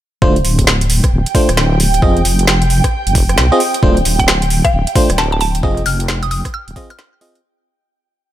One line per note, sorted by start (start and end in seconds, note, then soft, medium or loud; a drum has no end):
0.22 0.43 D1 loud
0.22 0.36 A3 medium
0.22 0.36 D4 medium
0.22 0.36 F4 medium
0.22 0.36 C5 loud
0.22 7.45 G5 medium
0.22 kick loud
0.36 closed hi-hat soft
0.45 1.01 D1 medium
0.45 open hi-hat loud
0.59 kick medium
0.59 closed hi-hat medium
0.67 snare loud
0.81 closed hi-hat medium
0.90 open hi-hat loud
1.04 kick loud
1.04 cross-stick medium
1.04 closed hi-hat medium
1.12 1.25 D1 loud
1.26 closed hi-hat medium
1.35 1.49 A3 medium
1.35 1.49 D4 medium
1.35 1.49 F4 medium
1.35 1.49 C5 loud
1.35 kick loud
1.35 open hi-hat loud
1.49 2.01 D1 loud
1.49 cross-stick medium
1.49 closed hi-hat medium
1.57 snare loud
1.80 open hi-hat loud
1.94 closed hi-hat medium
2.02 2.23 F1 loud
2.02 2.21 C4 medium
2.02 2.21 F4 medium
2.02 2.21 G#4 medium
2.02 2.21 D#5 medium
2.02 kick loud
2.17 closed hi-hat soft
2.25 2.82 F1 medium
2.25 open hi-hat loud
2.39 closed hi-hat medium
2.47 snare loud
2.62 closed hi-hat medium
2.70 open hi-hat medium
2.84 kick medium
2.84 cross-stick medium
2.84 closed hi-hat medium
3.07 3.39 F1 medium
3.07 closed hi-hat medium
3.15 kick loud
3.15 open hi-hat loud
3.29 cross-stick medium
3.29 closed hi-hat medium
3.38 3.50 C2 loud
3.38 snare loud
3.52 3.60 C4 medium
3.52 3.60 F4 medium
3.52 3.60 G#4 medium
3.52 3.60 D#5 loud
3.60 open hi-hat medium
3.74 closed hi-hat medium
3.83 4.04 D1 loud
3.83 3.97 A3 medium
3.83 3.97 D4 medium
3.83 3.97 F4 medium
3.83 3.97 C5 medium
3.83 kick loud
3.97 closed hi-hat soft
4.05 4.62 D1 medium
4.05 open hi-hat loud
4.19 4.35 G5 medium
4.19 kick medium
4.19 closed hi-hat medium
4.28 snare loud
4.42 closed hi-hat medium
4.50 open hi-hat loud
4.65 5.10 F5 medium
4.65 kick loud
4.65 cross-stick medium
4.65 closed hi-hat medium
4.73 4.86 D1 loud
4.87 closed hi-hat medium
4.96 5.10 A3 loud
4.96 5.10 D4 medium
4.96 5.10 F4 medium
4.96 5.10 C5 loud
4.96 kick loud
4.96 open hi-hat loud
5.10 5.62 D1 loud
5.10 cross-stick medium
5.10 closed hi-hat medium
5.18 5.27 A5 medium
5.18 snare loud
5.32 5.38 A5 medium
5.41 5.59 A5 medium
5.41 open hi-hat medium
5.55 closed hi-hat medium
5.63 5.84 F1 loud
5.63 5.82 C4 medium
5.63 5.82 F4 medium
5.63 5.82 G#4 medium
5.63 5.82 D#5 loud
5.63 kick loud
5.77 closed hi-hat soft
5.86 6.43 F1 loud
5.86 6.04 F6 medium
5.86 open hi-hat loud
6.00 closed hi-hat medium
6.08 snare loud
6.23 6.28 D#6 medium
6.23 closed hi-hat soft
6.31 6.40 D#6 medium
6.31 open hi-hat medium
6.45 kick medium
6.45 cross-stick medium
6.45 closed hi-hat medium
6.54 6.72 F6 medium
6.68 6.75 D#1 loud
6.68 closed hi-hat medium
6.76 6.90 C4 medium
6.76 6.90 F4 medium
6.76 6.90 G#4 medium
6.76 6.90 D#5 loud
6.76 kick loud
6.76 open hi-hat loud
6.90 7.21 F6 loud
6.90 cross-stick medium
6.90 closed hi-hat medium
6.99 snare loud
7.21 7.40 C4 medium
7.21 7.40 F4 medium
7.21 7.40 G#4 medium
7.21 7.40 D#5 medium
7.21 open hi-hat medium
7.35 closed hi-hat medium